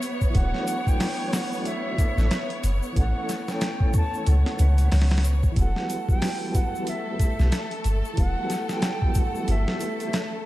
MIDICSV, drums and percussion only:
0, 0, Header, 1, 2, 480
1, 0, Start_track
1, 0, Tempo, 652174
1, 261, Time_signature, 4, 2, 24, 8
1, 7696, End_track
2, 0, Start_track
2, 0, Title_t, "Drums"
2, 15, Note_on_c, 9, 82, 81
2, 19, Note_on_c, 9, 42, 70
2, 89, Note_off_c, 9, 82, 0
2, 92, Note_off_c, 9, 42, 0
2, 156, Note_on_c, 9, 82, 55
2, 158, Note_on_c, 9, 36, 94
2, 229, Note_off_c, 9, 82, 0
2, 232, Note_off_c, 9, 36, 0
2, 255, Note_on_c, 9, 42, 89
2, 257, Note_on_c, 9, 36, 114
2, 260, Note_on_c, 9, 82, 38
2, 329, Note_off_c, 9, 42, 0
2, 330, Note_off_c, 9, 36, 0
2, 333, Note_off_c, 9, 82, 0
2, 401, Note_on_c, 9, 38, 37
2, 474, Note_off_c, 9, 38, 0
2, 495, Note_on_c, 9, 82, 112
2, 497, Note_on_c, 9, 42, 68
2, 568, Note_off_c, 9, 82, 0
2, 571, Note_off_c, 9, 42, 0
2, 639, Note_on_c, 9, 36, 100
2, 644, Note_on_c, 9, 82, 64
2, 713, Note_off_c, 9, 36, 0
2, 718, Note_off_c, 9, 82, 0
2, 737, Note_on_c, 9, 46, 82
2, 740, Note_on_c, 9, 38, 113
2, 740, Note_on_c, 9, 82, 42
2, 811, Note_off_c, 9, 46, 0
2, 814, Note_off_c, 9, 38, 0
2, 814, Note_off_c, 9, 82, 0
2, 978, Note_on_c, 9, 46, 77
2, 981, Note_on_c, 9, 38, 102
2, 981, Note_on_c, 9, 82, 97
2, 1051, Note_off_c, 9, 46, 0
2, 1054, Note_off_c, 9, 38, 0
2, 1055, Note_off_c, 9, 82, 0
2, 1123, Note_on_c, 9, 82, 50
2, 1196, Note_off_c, 9, 82, 0
2, 1218, Note_on_c, 9, 42, 89
2, 1223, Note_on_c, 9, 82, 37
2, 1292, Note_off_c, 9, 42, 0
2, 1297, Note_off_c, 9, 82, 0
2, 1460, Note_on_c, 9, 36, 96
2, 1461, Note_on_c, 9, 42, 68
2, 1464, Note_on_c, 9, 82, 92
2, 1533, Note_off_c, 9, 36, 0
2, 1534, Note_off_c, 9, 42, 0
2, 1537, Note_off_c, 9, 82, 0
2, 1604, Note_on_c, 9, 82, 58
2, 1606, Note_on_c, 9, 38, 39
2, 1678, Note_off_c, 9, 82, 0
2, 1680, Note_off_c, 9, 38, 0
2, 1699, Note_on_c, 9, 42, 85
2, 1702, Note_on_c, 9, 38, 115
2, 1704, Note_on_c, 9, 82, 43
2, 1773, Note_off_c, 9, 42, 0
2, 1775, Note_off_c, 9, 38, 0
2, 1778, Note_off_c, 9, 82, 0
2, 1841, Note_on_c, 9, 42, 46
2, 1915, Note_off_c, 9, 42, 0
2, 1940, Note_on_c, 9, 42, 71
2, 1940, Note_on_c, 9, 82, 99
2, 2014, Note_off_c, 9, 42, 0
2, 2014, Note_off_c, 9, 82, 0
2, 2079, Note_on_c, 9, 82, 57
2, 2153, Note_off_c, 9, 82, 0
2, 2181, Note_on_c, 9, 36, 110
2, 2182, Note_on_c, 9, 42, 86
2, 2182, Note_on_c, 9, 82, 38
2, 2254, Note_off_c, 9, 36, 0
2, 2255, Note_off_c, 9, 82, 0
2, 2256, Note_off_c, 9, 42, 0
2, 2422, Note_on_c, 9, 42, 70
2, 2422, Note_on_c, 9, 82, 106
2, 2424, Note_on_c, 9, 38, 39
2, 2495, Note_off_c, 9, 42, 0
2, 2495, Note_off_c, 9, 82, 0
2, 2498, Note_off_c, 9, 38, 0
2, 2562, Note_on_c, 9, 82, 50
2, 2564, Note_on_c, 9, 38, 49
2, 2636, Note_off_c, 9, 82, 0
2, 2637, Note_off_c, 9, 38, 0
2, 2656, Note_on_c, 9, 82, 48
2, 2659, Note_on_c, 9, 42, 93
2, 2661, Note_on_c, 9, 38, 117
2, 2730, Note_off_c, 9, 82, 0
2, 2732, Note_off_c, 9, 42, 0
2, 2735, Note_off_c, 9, 38, 0
2, 2800, Note_on_c, 9, 36, 101
2, 2874, Note_off_c, 9, 36, 0
2, 2895, Note_on_c, 9, 82, 86
2, 2898, Note_on_c, 9, 42, 65
2, 2899, Note_on_c, 9, 36, 103
2, 2969, Note_off_c, 9, 82, 0
2, 2971, Note_off_c, 9, 42, 0
2, 2973, Note_off_c, 9, 36, 0
2, 3047, Note_on_c, 9, 82, 55
2, 3120, Note_off_c, 9, 82, 0
2, 3139, Note_on_c, 9, 42, 91
2, 3143, Note_on_c, 9, 82, 41
2, 3213, Note_off_c, 9, 42, 0
2, 3216, Note_off_c, 9, 82, 0
2, 3285, Note_on_c, 9, 38, 53
2, 3359, Note_off_c, 9, 38, 0
2, 3377, Note_on_c, 9, 82, 96
2, 3379, Note_on_c, 9, 42, 67
2, 3451, Note_off_c, 9, 82, 0
2, 3452, Note_off_c, 9, 42, 0
2, 3517, Note_on_c, 9, 82, 57
2, 3519, Note_on_c, 9, 42, 44
2, 3590, Note_off_c, 9, 82, 0
2, 3593, Note_off_c, 9, 42, 0
2, 3619, Note_on_c, 9, 46, 67
2, 3621, Note_on_c, 9, 38, 92
2, 3622, Note_on_c, 9, 82, 44
2, 3689, Note_off_c, 9, 46, 0
2, 3689, Note_on_c, 9, 46, 65
2, 3692, Note_off_c, 9, 38, 0
2, 3692, Note_on_c, 9, 38, 89
2, 3696, Note_off_c, 9, 82, 0
2, 3761, Note_off_c, 9, 46, 0
2, 3761, Note_on_c, 9, 46, 61
2, 3764, Note_off_c, 9, 38, 0
2, 3764, Note_on_c, 9, 38, 87
2, 3808, Note_off_c, 9, 46, 0
2, 3808, Note_on_c, 9, 46, 67
2, 3811, Note_off_c, 9, 38, 0
2, 3811, Note_on_c, 9, 38, 95
2, 3860, Note_on_c, 9, 42, 73
2, 3860, Note_on_c, 9, 82, 88
2, 3882, Note_off_c, 9, 46, 0
2, 3885, Note_off_c, 9, 38, 0
2, 3933, Note_off_c, 9, 42, 0
2, 3934, Note_off_c, 9, 82, 0
2, 3997, Note_on_c, 9, 82, 57
2, 3999, Note_on_c, 9, 36, 98
2, 4071, Note_off_c, 9, 82, 0
2, 4073, Note_off_c, 9, 36, 0
2, 4095, Note_on_c, 9, 42, 92
2, 4097, Note_on_c, 9, 36, 105
2, 4107, Note_on_c, 9, 82, 38
2, 4169, Note_off_c, 9, 42, 0
2, 4171, Note_off_c, 9, 36, 0
2, 4180, Note_off_c, 9, 82, 0
2, 4242, Note_on_c, 9, 38, 40
2, 4315, Note_off_c, 9, 38, 0
2, 4340, Note_on_c, 9, 42, 69
2, 4340, Note_on_c, 9, 82, 94
2, 4414, Note_off_c, 9, 42, 0
2, 4414, Note_off_c, 9, 82, 0
2, 4479, Note_on_c, 9, 36, 96
2, 4484, Note_on_c, 9, 82, 52
2, 4553, Note_off_c, 9, 36, 0
2, 4558, Note_off_c, 9, 82, 0
2, 4577, Note_on_c, 9, 46, 82
2, 4580, Note_on_c, 9, 38, 121
2, 4587, Note_on_c, 9, 82, 42
2, 4650, Note_off_c, 9, 46, 0
2, 4653, Note_off_c, 9, 38, 0
2, 4660, Note_off_c, 9, 82, 0
2, 4817, Note_on_c, 9, 36, 91
2, 4818, Note_on_c, 9, 42, 73
2, 4818, Note_on_c, 9, 82, 97
2, 4891, Note_off_c, 9, 36, 0
2, 4892, Note_off_c, 9, 42, 0
2, 4892, Note_off_c, 9, 82, 0
2, 4969, Note_on_c, 9, 82, 50
2, 5043, Note_off_c, 9, 82, 0
2, 5055, Note_on_c, 9, 42, 92
2, 5058, Note_on_c, 9, 82, 40
2, 5128, Note_off_c, 9, 42, 0
2, 5132, Note_off_c, 9, 82, 0
2, 5296, Note_on_c, 9, 36, 95
2, 5296, Note_on_c, 9, 42, 68
2, 5304, Note_on_c, 9, 82, 94
2, 5369, Note_off_c, 9, 42, 0
2, 5370, Note_off_c, 9, 36, 0
2, 5378, Note_off_c, 9, 82, 0
2, 5441, Note_on_c, 9, 82, 47
2, 5443, Note_on_c, 9, 38, 36
2, 5515, Note_off_c, 9, 82, 0
2, 5516, Note_off_c, 9, 38, 0
2, 5535, Note_on_c, 9, 42, 93
2, 5538, Note_on_c, 9, 38, 119
2, 5541, Note_on_c, 9, 82, 42
2, 5608, Note_off_c, 9, 42, 0
2, 5611, Note_off_c, 9, 38, 0
2, 5615, Note_off_c, 9, 82, 0
2, 5677, Note_on_c, 9, 42, 46
2, 5750, Note_off_c, 9, 42, 0
2, 5773, Note_on_c, 9, 42, 68
2, 5781, Note_on_c, 9, 82, 85
2, 5846, Note_off_c, 9, 42, 0
2, 5855, Note_off_c, 9, 82, 0
2, 5924, Note_on_c, 9, 82, 55
2, 5998, Note_off_c, 9, 82, 0
2, 6015, Note_on_c, 9, 42, 84
2, 6017, Note_on_c, 9, 36, 108
2, 6022, Note_on_c, 9, 82, 37
2, 6088, Note_off_c, 9, 42, 0
2, 6090, Note_off_c, 9, 36, 0
2, 6095, Note_off_c, 9, 82, 0
2, 6254, Note_on_c, 9, 42, 74
2, 6257, Note_on_c, 9, 38, 39
2, 6259, Note_on_c, 9, 82, 85
2, 6328, Note_off_c, 9, 42, 0
2, 6331, Note_off_c, 9, 38, 0
2, 6332, Note_off_c, 9, 82, 0
2, 6398, Note_on_c, 9, 38, 48
2, 6398, Note_on_c, 9, 82, 54
2, 6471, Note_off_c, 9, 82, 0
2, 6472, Note_off_c, 9, 38, 0
2, 6492, Note_on_c, 9, 42, 91
2, 6495, Note_on_c, 9, 38, 122
2, 6495, Note_on_c, 9, 82, 42
2, 6566, Note_off_c, 9, 42, 0
2, 6569, Note_off_c, 9, 38, 0
2, 6569, Note_off_c, 9, 82, 0
2, 6639, Note_on_c, 9, 36, 95
2, 6712, Note_off_c, 9, 36, 0
2, 6730, Note_on_c, 9, 82, 88
2, 6736, Note_on_c, 9, 42, 70
2, 6738, Note_on_c, 9, 36, 100
2, 6804, Note_off_c, 9, 82, 0
2, 6810, Note_off_c, 9, 42, 0
2, 6812, Note_off_c, 9, 36, 0
2, 6882, Note_on_c, 9, 82, 45
2, 6955, Note_off_c, 9, 82, 0
2, 6976, Note_on_c, 9, 42, 88
2, 6976, Note_on_c, 9, 82, 37
2, 7049, Note_off_c, 9, 42, 0
2, 7050, Note_off_c, 9, 82, 0
2, 7124, Note_on_c, 9, 38, 53
2, 7198, Note_off_c, 9, 38, 0
2, 7215, Note_on_c, 9, 82, 77
2, 7217, Note_on_c, 9, 42, 67
2, 7289, Note_off_c, 9, 82, 0
2, 7291, Note_off_c, 9, 42, 0
2, 7361, Note_on_c, 9, 42, 43
2, 7361, Note_on_c, 9, 82, 52
2, 7435, Note_off_c, 9, 42, 0
2, 7435, Note_off_c, 9, 82, 0
2, 7457, Note_on_c, 9, 82, 37
2, 7458, Note_on_c, 9, 42, 91
2, 7461, Note_on_c, 9, 38, 126
2, 7531, Note_off_c, 9, 82, 0
2, 7532, Note_off_c, 9, 42, 0
2, 7535, Note_off_c, 9, 38, 0
2, 7696, End_track
0, 0, End_of_file